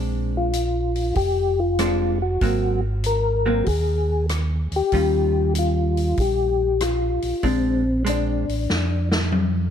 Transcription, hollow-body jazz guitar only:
0.00 0.51 G#3 soft
0.00 0.51 C4 soft
0.00 0.51 D4 medium
1.79 2.17 G#3 medium
1.79 2.18 C4 medium
1.79 2.18 D4 medium
2.42 2.80 F#3 soft
2.42 2.80 A#3 soft
2.42 2.81 C4 medium
3.46 3.65 F#3 medium
3.46 3.65 A#3 medium
3.46 3.66 C4 medium
4.93 6.69 D#3 medium
4.93 6.69 G3 medium
4.93 6.69 C#4 medium
4.93 6.69 F4 medium
7.43 7.81 G#3 soft
7.43 7.82 C4 medium
7.43 7.82 D4 medium
8.05 8.44 G#3 medium
8.05 8.44 C4 medium
8.05 8.44 D4 medium

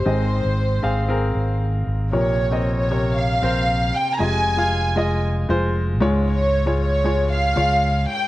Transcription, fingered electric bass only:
0.06 0.42 G#1 medium
0.45 0.81 G#1 medium
0.83 1.31 G#1 medium
1.35 1.83 G#1 medium
1.87 2.11 G#1 medium
2.13 3.38 A#1 medium
3.42 3.90 A#1 medium
4.20 5.46 F1 medium
5.49 6.01 F1 medium
6.01 7.53 C#2 medium
7.57 8.05 C#2 medium

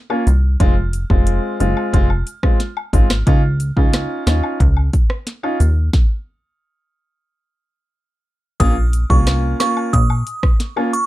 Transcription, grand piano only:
0.10 0.23 A#3 medium
0.10 0.23 C#4 medium
0.10 0.23 F4 medium
0.60 0.73 G#3 loud
0.60 0.73 C4 medium
0.60 0.73 F4 loud
1.10 1.56 G#3 medium
1.10 1.56 C4 medium
1.10 1.56 F4 medium
1.60 1.91 G#3 medium
1.60 1.91 C4 medium
1.60 1.91 F4 medium
1.93 2.06 G#3 medium
1.93 2.07 C4 medium
1.93 2.07 F4 loud
2.43 2.57 G#3 medium
2.43 2.57 C4 medium
2.43 2.57 F4 medium
2.93 3.07 G#3 medium
2.93 3.07 C4 medium
2.93 3.07 F4 medium
3.27 3.40 C#4 medium
3.27 3.40 D#4 medium
3.27 3.40 F4 loud
3.76 4.23 C#4 medium
3.76 4.23 D#4 medium
3.76 4.23 F4 medium
4.26 4.57 C#4 medium
4.26 4.57 D#4 medium
4.26 4.58 F4 medium
5.43 5.57 C#4 medium
5.43 5.57 D#4 medium
5.43 5.57 F4 medium
8.60 8.73 A#3 medium
8.60 8.73 C#4 medium
8.60 8.73 F4 loud
9.10 9.56 A#3 medium
9.10 9.56 C#4 medium
9.10 9.56 F4 medium
9.60 9.91 A#3 medium
9.60 9.91 C#4 medium
9.60 9.91 F4 medium
10.76 10.90 A#3 medium
10.76 10.90 C#4 medium
10.76 10.90 F4 medium

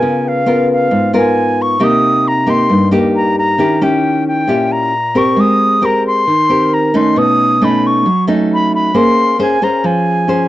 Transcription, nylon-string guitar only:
0.00 0.89 C#3 medium
0.00 0.43 B3 medium
0.00 0.43 F4 medium
0.00 0.43 A#4 medium
0.46 1.10 B3 medium
0.46 1.10 F4 medium
0.46 1.10 A#4 medium
0.91 1.78 G#2 medium
1.13 1.77 B3 medium
1.13 1.77 F4 medium
1.13 1.77 A#4 medium
1.80 2.67 C3 medium
1.80 2.44 A#3 medium
1.80 2.44 D#4 medium
1.80 2.44 G4 medium
2.47 2.88 A#3 medium
2.47 2.88 D#4 medium
2.47 2.89 G4 medium
2.70 3.57 G2 medium
2.91 3.57 A#3 medium
2.91 3.57 D#4 medium
2.91 3.57 G4 medium
3.58 4.46 D#3 medium
3.58 3.78 C#4 medium
3.58 3.78 E4 medium
3.58 3.78 G4 medium
3.81 4.45 C#4 medium
3.81 4.45 E4 medium
3.81 4.45 G4 medium
4.47 5.35 A#2 medium
4.47 4.93 C#4 medium
4.47 4.93 E4 medium
4.47 4.93 G4 medium
5.15 5.80 C4 medium
5.15 5.81 G4 medium
5.15 5.81 A#4 medium
5.36 6.24 G#3 medium
5.81 6.26 C4 medium
5.81 6.26 G4 medium
5.81 6.27 A#4 medium
6.27 7.14 D#3 medium
6.49 6.90 C4 medium
6.49 6.90 G4 medium
6.49 6.91 A#4 medium
6.94 7.57 A3 medium
6.94 7.57 C#4 medium
6.94 7.58 D#4 medium
7.16 8.03 B2 medium
7.62 8.06 A3 medium
7.62 8.06 C#4 medium
7.62 8.06 D#4 medium
8.06 8.92 F#3 medium
8.27 8.91 A3 medium
8.27 8.91 C#4 medium
8.27 8.91 D#4 medium
8.94 9.81 A#3 medium
8.94 9.35 C#4 medium
8.94 9.36 G#4 medium
8.94 9.36 C5 medium
9.39 9.58 C#4 medium
9.39 9.58 G#4 medium
9.39 9.58 C5 medium
9.62 10.25 C#4 medium
9.62 10.25 G#4 medium
9.62 10.25 C5 medium
9.84 10.48 F3 medium
10.28 10.48 C#4 medium
10.28 10.48 G#4 medium
10.28 10.48 C5 medium

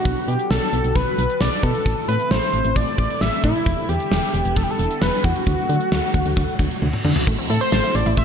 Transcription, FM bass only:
0.05 0.14 B1 loud
0.28 0.36 B2 medium
0.50 0.59 B1 medium
0.73 0.82 B1 medium
0.84 0.93 B1 medium
0.96 1.04 B1 loud
1.18 1.27 B1 loud
1.41 1.49 B1 loud
1.63 1.72 B2 loud
1.86 1.94 A1 loud
2.08 2.17 A2 loud
2.31 2.39 A1 loud
2.53 2.62 A1 medium
2.65 2.73 A1 medium
2.76 2.85 A1 loud
2.98 3.07 A1 loud
3.21 3.30 A1 loud
3.44 3.52 A2 medium
3.66 3.75 E1 loud
3.89 3.97 E2 loud
4.11 4.20 E1 loud
4.34 4.42 E1 loud
4.45 4.54 E1 medium
4.56 4.65 E1 loud
4.79 4.88 E1 loud
5.02 5.10 E1 loud
5.24 5.33 E2 loud
5.47 5.55 D2 loud
5.69 5.78 D3 loud
5.92 6.00 D2 medium
6.14 6.23 D2 loud
6.26 6.34 D2 medium
6.37 6.46 D2 loud
6.59 6.68 D2 medium
6.82 6.91 D2 loud
7.05 7.13 D3 loud
7.27 7.36 A1 loud
7.50 7.58 A2 loud
7.72 7.81 A1 medium
7.95 8.03 A1 medium
8.06 8.15 A1 loud
8.17 8.25 A1 loud

